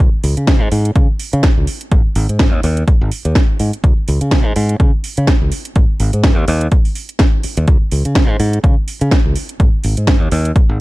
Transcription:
0.00 kick, closed hi-hat
0.24 C#2, open hi-hat
0.37 C#3, closed hi-hat
0.47 kick, snare, closed hi-hat
0.62 G#2
0.72 G#2, open hi-hat
0.85 closed hi-hat
0.95 C#3, kick, closed hi-hat
1.19 open hi-hat
1.33 C#3, closed hi-hat
1.43 kick, snare, closed hi-hat
1.58 C#2
1.67 open hi-hat
1.81 closed hi-hat
1.91 G#1, kick, closed hi-hat
2.06 muted fingered electric bass stroke
2.15 G#1, open hi-hat
2.29 G#2, closed hi-hat
2.39 kick, snare, closed hi-hat
2.53 D#2
2.63 D#2, open hi-hat
2.77 closed hi-hat
2.88 kick, closed hi-hat
3.01 G#1
3.12 open hi-hat
3.25 D#2, closed hi-hat
3.35 kick, snare, closed hi-hat
3.60 G#2, open hi-hat
3.73 closed hi-hat
3.84 C#2, kick, closed hi-hat
3.97 muted fingered electric bass stroke
4.08 C#2, open hi-hat
4.21 C#3, closed hi-hat
4.31 kick, snare, closed hi-hat
4.46 G#2
4.56 G#2, open hi-hat
4.69 closed hi-hat
4.80 C#3, kick, closed hi-hat
5.04 open hi-hat
5.17 C#3, closed hi-hat
5.27 kick, snare, closed hi-hat
5.42 C#2
5.52 open hi-hat
5.65 closed hi-hat
5.76 G#1, kick, closed hi-hat
5.90 muted fingered electric bass stroke
6.00 G#1, open hi-hat
6.13 G#2, closed hi-hat
6.24 kick, snare, closed hi-hat
6.37 D#2
6.48 D#2, open hi-hat
6.61 closed hi-hat
6.72 kick, closed hi-hat
6.85 open hi-hat
6.95 open hi-hat
7.09 closed hi-hat
7.19 kick, snare, closed hi-hat
7.43 muted fingered electric bass stroke, open hi-hat
7.57 D#2, closed hi-hat
7.68 C#2, kick, closed hi-hat
7.91 C#2, open hi-hat
8.05 C#3, closed hi-hat
8.15 kick, snare, closed hi-hat
8.29 G#2
8.40 G#2, open hi-hat
8.53 closed hi-hat
8.64 C#3, kick, closed hi-hat
8.88 open hi-hat
9.01 C#3, closed hi-hat
9.11 kick, snare, closed hi-hat
9.26 C#2
9.36 open hi-hat
9.49 closed hi-hat
9.60 G#1, kick, closed hi-hat
9.74 muted fingered electric bass stroke
9.84 G#1, open hi-hat
9.97 G#2, closed hi-hat
10.07 kick, snare, closed hi-hat
10.22 D#2
10.32 D#2, open hi-hat
10.45 closed hi-hat
10.56 kick, closed hi-hat
10.69 G#1

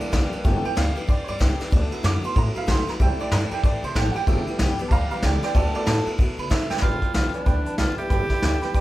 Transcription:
Already playing: A3 A#3 B3 D4 E4
0.00 E3 G3 B3 G4, muted upright bass stroke, ride
0.12 B1 G2 D3 E3 G3 B3 G4, kick, snare, ride
0.32 E3 G3 B3 G4, muted upright bass stroke, ride
0.44 G1 G2 D3 E3 G3 A3 B3 E4 G4, kick, ride
0.64 E3 G3 B3 G4 G5, muted upright bass stroke, ride
0.76 D2 G2 D3 E3 G3 B3 G4 F5, snare, ride
0.96 E3 G3 B3 G4, muted upright bass stroke, ride
1.07 E2 E3 G3 B3 G4 D5, kick, ride
1.24 B3 G4 C#5, ride
1.29 G2 E3 G3 D5
1.39 C2 G2 D3 E3 G3 B3 G4, kick, snare, ride
1.59 E3 G3 B3 G4, muted upright bass stroke, snare, ride
1.71 D2 D3 F#3 A3 B3 F#4, kick, ride
1.91 F#3 A3 B3 E4 F#4, muted upright bass stroke, ride
2.03 F#2 D3 F#3 A3 B3 F#4 D6, snare, ride
2.23 A3 B3 F#4 C6, muted upright bass stroke, ride
2.35 A2 F#3 A3 B3 F#4 A#5, kick, ride
2.54 F#3 A3 B3 E4 F#4 F5, muted upright bass stroke, ride
2.67 B1 D3 F#3 A3 B3 F#4 C6, kick, snare, ride
2.87 A3 B3 F#4 A#5, muted upright bass stroke, snare, ride
3.00 C2 C3 E3 A3 D4 E4 G4 G5, kick, ride
3.19 A3 E4 G4 D5, muted upright bass stroke, ride
3.31 G2 C3 E3 A3 E4 G4 A#5, snare, ride
3.51 A3 E4 G4 G5, muted upright bass stroke, ride
3.63 A2 E3 A3 E4 G4 D5, kick, ride
3.82 C3 A3 E4 G4 C5, ride
3.95 A1 C3 E3 A3 E4 G4 G5, kick, snare, ride
4.11 G4 F#5, muted upright bass stroke, ride
4.16 A3 E4 G5
4.27 G1 G2 D3 E3 G3 A3 B3 E4 G4, kick, ride
4.47 E3 G3 B3 G4, muted upright bass stroke, ride
4.59 B1 G2 D3 E3 G3 B3 G4, snare, ride
4.78 E3 G3 B3 G4, muted upright bass stroke, ride
4.88 D2 E3 F5 A5, kick, ride
4.92 G3 B3 G4 A#5
5.10 E3 G3 B3 G4 F5 A#5, muted upright bass stroke, ride
5.22 C#2 G2 D3 E3 G3 B3 G4 D5 G5, kick, snare, ride
5.43 E3 G3 B3 G4 D5 G5, muted upright bass stroke, snare, ride
5.54 D2 D3 F#3 A3 B3 F#4 A4 D5, kick, ride
5.74 F#3 A3 B3 E4 F#4 A4 D5, muted upright bass stroke, ride
5.86 A2 D3 F#3 A3 B3 F#4 A4 D5, snare, ride
6.05 A3 B3 F#4, muted upright bass stroke, ride
6.18 B2 F#3 A3 B3 F#4, kick, ride
6.37 D3 A3 B3 F#4 B5, ride
6.50 C3 D3 F#3 A3 B3 F#4 E5, kick, snare, ride
6.70 A3 B3 F#4 G5, muted upright bass stroke, snare
6.78 G1 G2 B4 D5, snare, closed hi-hat
6.82 D3 E3 G3 B3 E4 F4 G5, kick
7.02 E3 G3 B3 E4 B4 D5 G5, muted upright bass stroke, kick, closed hi-hat
7.13 B1 G2 D3 E3 G3 B3 E4 F4 B4 D5 G5, snare, closed hi-hat
7.33 E3 G3 B3 D4 E4 B4 D5 G5, muted upright bass stroke, closed hi-hat
7.46 D2 E3 G3 B3 E4 B4 D5 G5, kick, closed hi-hat
7.65 E3 G3 B3 E4 B4 D5 A5, muted upright bass stroke, closed hi-hat
7.77 B1 G2 D3 E3 G3 B3 E4 F4 B4 D5 G5, snare, closed hi-hat
7.97 E3 G3 B3 E4 G4 B4 D5 E5, muted upright bass stroke, closed hi-hat
8.10 G1 G2 D3 E3 G3 B3 E4 B4 D5 G5, kick, closed hi-hat
8.29 E3 G3 B3 E4 B4 D5 E5, muted upright bass stroke, kick, snare, closed hi-hat
8.42 D2 G2 D3 E3 G3 B3 E4 B4 D5 G5, snare, closed hi-hat
8.62 E3 G3 B3 E4 B4 D5 G5, muted upright bass stroke, snare, closed hi-hat
8.73 E2 E3 G3 B3 E4 B4 D5 G5, kick, closed hi-hat

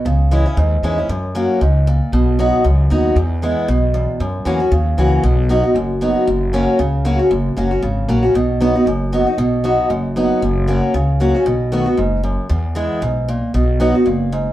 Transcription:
0.05 C#2 C#3
0.31 E3 G#3 C#4 E4
0.46 C#4 E4
0.57 D#2 G#2
0.83 E2 E3 G#3 C#4 E4
0.98 C#4 E4
1.09 F#2
1.35 F#3 A#3 C#4 F#4
1.61 C#2 G#2
1.87 A#2
2.12 B1 B2
2.39 F#3 B3 D#4 F#4
2.64 C#2 F#2
2.90 D#2 F#3 B3 D#4 F#4
3.16 E2
3.42 E3 G#3 B3 E4
3.68 B1 B2
3.94 E2
4.20 F#2
4.45 E2 E3 A#3 C#4 F#4
4.60 C#4 F#4
4.72 D#2 C#3
4.97 C#2 E3 A#3 C#4 F#4
5.23 B1 B2
5.49 F#3 B3 D#4 F#4
5.63 D#4 F#4
5.75 F#1 F#2
6.01 F#3 B3 D#4 F#4
6.27 F#1 F#2
6.53 F#3 A#3 C#4 F#4
6.79 C#2 C#3
7.05 F#3 A#3 C#4 F#4
7.19 C#4 F#4
7.31 F#1 F#2
7.57 F#1 F#3 A#3 C#4 F#4
7.71 C#4 F#4
7.82 G#1 C#3
8.08 A#1 F#3 A#3 C#4 F#4
8.23 C#4 F#4
8.34 B1 B2
8.61 F#3 B3 D#4 F#4
8.75 D#4 F#4
8.86 F#1 F#2
9.13 F#3 B3 D#4 F#4
9.27 D#4 F#4
9.38 B1 B2
9.64 F#3 B3 D#4 F#4
9.90 F#1 F#2
10.16 F#3 B3 D#4 F#4
10.42 F#1 F#2
10.67 F#3 A#3 C#4 F#4
10.94 C#2 C#3
11.20 F#3 A#3 C#4 F#4
11.35 C#4 F#4
11.46 B1 B2
11.72 D#3 A3 B3 F#4
11.86 B3 F#4
11.97 F#1 G#2
12.24 F#2
12.49 E2
12.75 E3 G#3 B3 E4
13.02 B1 G#2
13.28 A#2
13.54 B1 B2
13.80 F#3 B3 D#4 F#4
13.95 D#4 F#4
14.06 F#1 A#2
14.32 G#2

